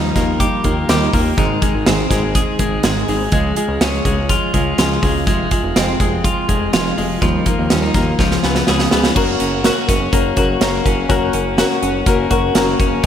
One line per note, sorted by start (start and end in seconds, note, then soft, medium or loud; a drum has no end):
0.00 0.12 D#2 loud
0.00 0.15 D#3 medium
0.00 1.38 F3 medium
0.00 0.16 G3 medium
0.00 0.15 A#3 medium
0.00 0.16 A#3 medium
0.00 0.15 D#4 medium
0.00 0.13 F4 medium
0.14 0.46 D#2 medium
0.14 0.38 A#3 soft
0.14 0.39 D#4 soft
0.14 0.40 F4 medium
0.14 kick medium
0.14 snare soft
0.14 closed hi-hat medium
0.38 0.64 G3 medium
0.38 0.64 A#3 medium
0.38 0.63 D#4 medium
0.38 0.62 F4 medium
0.38 0.88 G4 medium
0.38 kick medium
0.38 closed hi-hat medium
0.63 0.85 D#2 medium
0.63 0.88 A#3 soft
0.63 0.89 D#4 medium
0.63 0.88 F4 medium
0.63 kick medium
0.63 closed hi-hat medium
0.88 1.09 D#2 medium
0.88 1.13 D#3 medium
0.88 1.13 G3 medium
0.88 1.14 A#3 medium
0.88 1.13 D#4 medium
0.88 1.11 F4 medium
0.88 1.43 G4 medium
0.88 snare loud
0.88 closed hi-hat medium
1.12 1.34 D#2 medium
1.12 1.38 A#3 soft
1.12 1.37 D#4 soft
1.12 1.37 F4 soft
1.12 kick medium
1.12 open hi-hat medium
1.37 1.58 G#1 loud
1.37 1.62 G#2 medium
1.37 1.62 D#3 medium
1.37 1.62 G#3 medium
1.37 1.62 C4 medium
1.37 1.61 D#4 medium
1.37 1.60 G#4 medium
1.37 kick medium
1.37 closed hi-hat medium
1.61 1.85 G#3 soft
1.61 1.86 C4 soft
1.61 1.86 D#4 soft
1.61 1.86 G#4 soft
1.61 kick medium
1.61 closed hi-hat medium
1.75 1.85 G#1 medium
1.86 2.07 G#1 loud
1.86 2.10 G#2 medium
1.86 2.11 D#3 medium
1.86 2.11 G#3 medium
1.86 2.10 C4 medium
1.86 2.09 D#4 medium
1.86 2.08 G#4 medium
1.86 snare loud
1.86 closed hi-hat medium
2.10 2.41 G#1 loud
2.10 2.33 G#3 soft
2.10 2.34 C4 soft
2.10 2.35 D#4 soft
2.10 2.35 G#4 soft
2.10 kick medium
2.10 snare soft
2.10 closed hi-hat medium
2.34 2.59 G#3 medium
2.34 2.59 C4 medium
2.34 2.58 D#4 medium
2.34 2.57 G#4 medium
2.34 kick medium
2.34 closed hi-hat medium
2.59 2.79 G#1 medium
2.59 2.83 G#3 soft
2.59 2.83 C4 soft
2.59 2.84 D#4 soft
2.59 2.83 G#4 medium
2.59 kick medium
2.59 closed hi-hat medium
2.83 3.04 G#1 medium
2.83 3.08 G#2 medium
2.83 3.08 D#3 medium
2.83 3.08 G#3 medium
2.83 3.09 C4 medium
2.83 3.07 D#4 medium
2.83 3.07 G#4 medium
2.83 snare loud
2.83 closed hi-hat medium
3.08 3.28 G#1 loud
3.08 3.31 G#3 soft
3.08 3.32 C4 soft
3.08 3.32 D#4 medium
3.08 3.32 G#4 medium
3.08 open hi-hat medium
3.31 3.52 C#2 medium
3.31 3.56 C#3 medium
3.31 3.57 F3 medium
3.31 3.57 G#3 medium
3.31 3.56 F4 medium
3.31 3.54 G#4 medium
3.31 kick loud
3.31 closed hi-hat medium
3.55 3.80 G#3 soft
3.55 3.81 F4 medium
3.55 3.80 G#4 medium
3.55 closed hi-hat medium
3.68 3.79 C#2 medium
3.80 4.01 C#2 loud
3.80 4.05 C#3 medium
3.80 4.05 F3 medium
3.80 4.06 G#3 medium
3.80 5.32 C#4 medium
3.80 4.05 F4 medium
3.80 4.04 G#4 medium
3.80 snare loud
3.80 closed hi-hat medium
4.05 4.35 C#2 loud
4.05 4.29 G#3 soft
4.05 4.30 F4 soft
4.05 4.30 G#4 soft
4.05 kick medium
4.05 closed hi-hat medium
4.29 4.54 F3 medium
4.29 4.55 G#3 medium
4.29 4.54 F4 medium
4.29 4.53 G#4 medium
4.29 kick medium
4.29 closed hi-hat medium
4.54 4.74 C#2 medium
4.54 4.78 G#3 soft
4.54 4.79 F4 medium
4.54 4.78 G#4 medium
4.54 kick medium
4.54 closed hi-hat medium
4.78 4.98 C#2 loud
4.78 5.03 C#3 medium
4.78 5.03 F3 medium
4.78 5.03 G#3 medium
4.78 5.03 F4 medium
4.78 5.01 G#4 medium
4.78 snare loud
4.78 closed hi-hat medium
5.03 5.29 C#2 loud
5.03 5.26 G#3 soft
5.03 5.27 F4 soft
5.03 5.27 G#4 medium
5.03 kick medium
5.03 open hi-hat medium
5.26 5.47 F1 medium
5.26 5.51 F2 medium
5.26 5.51 C3 medium
5.26 5.52 F3 medium
5.26 5.52 G#3 medium
5.26 5.50 F4 medium
5.26 5.50 G#4 medium
5.26 kick loud
5.26 closed hi-hat medium
5.51 5.75 F3 soft
5.51 5.76 G#3 soft
5.51 5.76 F4 medium
5.51 5.75 G#4 medium
5.51 kick medium
5.51 closed hi-hat medium
5.63 5.73 F1 loud
5.75 5.96 F1 medium
5.75 6.00 F2 medium
5.75 6.00 C3 medium
5.75 6.00 F3 medium
5.75 6.00 G#3 medium
5.75 7.27 C4 medium
5.75 5.99 F4 medium
5.75 5.98 G#4 medium
5.75 snare medium
5.75 closed hi-hat medium
5.99 6.30 F1 medium
5.99 6.22 F3 soft
5.99 6.23 G#3 soft
5.99 6.24 F4 medium
5.99 6.24 G#4 medium
5.99 kick medium
5.99 closed hi-hat medium
6.23 6.48 F3 medium
6.23 6.49 G#3 medium
6.23 6.48 F4 medium
6.23 6.47 G#4 medium
6.23 kick medium
6.23 closed hi-hat medium
6.48 6.69 F1 medium
6.48 6.72 F3 soft
6.48 6.72 G#3 medium
6.48 6.73 F4 medium
6.48 6.73 G#4 medium
6.48 kick medium
6.48 closed hi-hat medium
6.72 6.93 F1 medium
6.72 6.97 F2 medium
6.72 6.97 C3 medium
6.72 6.97 F3 medium
6.72 6.97 G#3 medium
6.72 6.96 F4 medium
6.72 6.95 G#4 medium
6.72 snare loud
6.72 closed hi-hat medium
6.96 7.18 F1 medium
6.96 7.21 F3 soft
6.96 7.21 G#3 soft
6.96 7.21 F4 soft
6.96 7.21 G#4 medium
6.96 open hi-hat medium
7.21 7.42 D#2 medium
7.21 7.46 D#3 medium
7.21 8.18 F3 medium
7.21 7.46 G3 medium
7.21 7.46 A#3 medium
7.21 7.46 D#4 medium
7.21 7.44 F4 medium
7.21 kick loud
7.21 closed hi-hat medium
7.45 7.70 A#3 soft
7.45 7.71 D#4 soft
7.45 7.70 F4 soft
7.45 kick medium
7.45 closed hi-hat medium
7.59 7.68 D#2 medium
7.70 7.91 D#2 loud
7.70 7.94 D#3 medium
7.70 7.95 G3 medium
7.70 7.95 A#3 medium
7.70 7.83 C#4 medium
7.70 7.95 D#4 medium
7.70 7.93 F4 medium
7.70 snare medium
7.70 closed hi-hat medium
7.83 8.24 D#4 soft
7.94 8.14 D#2 medium
7.94 8.20 A#3 soft
7.94 8.19 D#4 soft
7.94 8.19 F4 medium
7.94 kick medium
7.94 snare soft
7.94 closed hi-hat medium
8.19 8.39 C#2 loud
8.19 9.21 F3 medium
8.19 8.43 G#3 medium
8.19 8.44 B3 medium
8.19 8.43 F4 medium
8.19 8.41 G#4 medium
8.19 kick medium
8.19 snare soft
8.31 snare soft
8.43 8.63 C#2 medium
8.43 8.67 B3 soft
8.43 8.67 F4 medium
8.43 8.67 G#4 medium
8.43 snare medium
8.55 snare medium
8.67 8.88 C#2 medium
8.67 8.91 C#3 medium
8.67 8.91 G#3 medium
8.67 8.92 B3 medium
8.67 8.92 F4 medium
8.67 8.90 G#4 medium
8.67 snare medium
8.79 snare medium
8.91 9.12 C#2 medium
8.91 9.16 B3 soft
8.91 9.16 F4 soft
8.91 9.16 G#4 medium
8.91 snare medium
9.03 snare medium
9.15 9.36 F#1 loud
9.15 9.40 F#3 medium
9.15 10.13 A#3 medium
9.15 9.47 C#4 loud
9.15 9.40 C#4 medium
9.15 9.47 F#4 medium
9.15 9.39 F#4 medium
9.15 9.38 A#4 medium
9.15 9.48 A#4 loud
9.15 kick medium
9.15 crash medium
9.39 9.70 F#1 medium
9.39 9.63 C#4 soft
9.39 9.64 F#4 medium
9.39 9.64 A#4 medium
9.39 closed hi-hat medium
9.64 9.88 F#3 medium
9.64 9.95 C#4 medium
9.64 9.89 C#4 medium
9.64 9.96 F#4 medium
9.64 9.88 F#4 medium
9.64 9.86 A#4 medium
9.64 9.96 A#4 medium
9.64 snare medium
9.64 closed hi-hat medium
9.87 10.09 F#1 loud
9.87 10.11 C#4 soft
9.87 10.13 F#4 medium
9.87 10.12 A#4 soft
9.87 kick medium
9.87 snare soft
9.87 closed hi-hat medium
10.12 10.33 F#1 loud
10.12 10.37 F#3 medium
10.12 10.61 A#3 medium
10.12 10.28 C#4 medium
10.12 10.37 C#4 medium
10.12 10.29 F#4 medium
10.12 10.36 F#4 medium
10.12 10.35 A#4 medium
10.12 10.29 A#4 medium
10.12 kick medium
10.12 closed hi-hat medium
10.36 10.57 F#1 loud
10.36 10.53 C#4 medium
10.36 10.59 C#4 soft
10.36 10.60 F#4 soft
10.36 10.53 F#4 medium
10.36 10.61 A#4 medium
10.36 10.54 A#4 medium
10.36 kick medium
10.36 closed hi-hat medium
10.60 10.81 F#1 loud
10.60 10.85 F#3 medium
10.60 11.09 A#3 medium
10.60 10.85 C#4 medium
10.60 10.92 C#4 medium
10.60 10.84 F#4 medium
10.60 10.93 F#4 medium
10.60 10.82 A#4 medium
10.60 10.93 A#4 medium
10.60 snare loud
10.60 closed hi-hat medium
10.84 11.06 F#1 loud
10.84 11.08 C#4 soft
10.84 11.08 F#4 soft
10.84 11.09 A#4 medium
10.84 kick medium
10.84 closed hi-hat medium
11.08 11.30 F#1 loud
11.08 11.33 F#3 medium
11.08 12.06 A#3 medium
11.08 11.34 C#4 medium
11.08 11.41 C#4 medium
11.08 11.33 F#4 medium
11.08 11.41 F#4 medium
11.08 11.32 A#4 medium
11.08 11.42 A#4 loud
11.08 kick loud
11.08 closed hi-hat medium
11.33 11.64 F#1 medium
11.33 11.57 C#4 soft
11.33 11.57 F#4 soft
11.33 11.58 A#4 medium
11.33 closed hi-hat medium
11.57 11.82 F#3 medium
11.57 11.83 C#4 medium
11.57 11.90 C#4 medium
11.57 11.82 F#4 medium
11.57 11.90 F#4 medium
11.57 11.80 A#4 medium
11.57 11.91 A#4 medium
11.57 snare loud
11.57 closed hi-hat medium
11.81 12.03 F#1 loud
11.81 12.06 C#4 soft
11.81 12.07 F#4 soft
11.81 12.06 A#4 medium
11.81 closed hi-hat medium
12.06 12.27 F#1 loud
12.06 12.31 F#3 medium
12.06 12.55 A#3 medium
12.06 12.22 C#4 medium
12.06 12.31 C#4 medium
12.06 12.23 F#4 medium
12.06 12.30 F#4 medium
12.06 12.24 A#4 medium
12.06 12.29 A#4 medium
12.06 kick medium
12.06 closed hi-hat medium
12.30 12.51 F#1 medium
12.30 12.47 C#4 medium
12.30 12.54 C#4 soft
12.30 12.55 F#4 medium
12.30 12.47 F#4 medium
12.30 12.55 A#4 medium
12.30 12.48 A#4 medium
12.30 kick medium
12.30 closed hi-hat medium
12.55 12.75 F#1 loud
12.55 12.79 F#3 medium
12.55 13.06 A#3 medium
12.55 12.80 C#4 medium
12.55 12.87 C#4 medium
12.55 12.79 F#4 medium
12.55 12.87 F#4 medium
12.55 12.78 A#4 medium
12.55 12.88 A#4 medium
12.55 snare loud
12.55 closed hi-hat medium
12.79 13.00 F#1 loud
12.79 13.04 C#4 soft
12.79 13.04 F#4 soft
12.79 13.04 A#4 medium
12.79 kick medium
12.79 closed hi-hat medium